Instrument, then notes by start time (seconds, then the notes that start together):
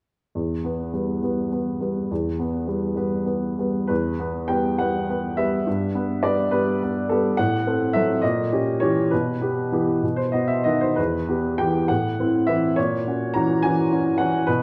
upright piano
0.35 E2
0.65 B3 B4
0.94 G3 B3 B4
1.22 G3 B3 B4
1.52 B3 B4
1.81 G3 B3 B4
2.11 E2
2.39 B3 B4
2.67 G3 B3 B4
2.96 G3 B3 B4
3.26 B3 B4
3.59 G3 B3 B4
3.87 E2 B4
4.20 B3 B4
4.48 G3 B3 B4 G5
4.78 G3 B3 B4 F#5
5.09 B3 B4
5.37 G3 B3 B4 E5
5.67 G2
5.95 B3 B4
6.23 G3 B3 B4 D5
6.51 G3 B3 B4
6.83 B3 B4
7.09 G3 B3 A4 B4
7.37 A2 F#5
7.67 C4 A4
7.93 F#3 C4 A4 E5
8.22 A#2 D#5
8.52 C#4 G4
8.80 E3 C#4 G4 C#5
9.11 B2 B4
9.41 B3 G4
9.72 E3 B3 G4
10.03 B2
10.16 C5
10.32 B3 F#4 D#5
10.48 E5
10.64 D#3 B3 F#4 D#5
10.81 C5
10.96 E2 B4
11.29 B3 G4
11.58 E3 B3 G4 G5
11.88 A2 F#5
12.20 C4 E4
12.47 E3 C4 E4 E5
12.76 A#2 C#5
13.07 C#4 F#4
13.34 E3 C#4 F#4 A#5
13.63 E3 C#4 F#4 G#5
13.92 C#4 F#4
14.18 E3 C#4 F#4 F#5
14.47 B2 B4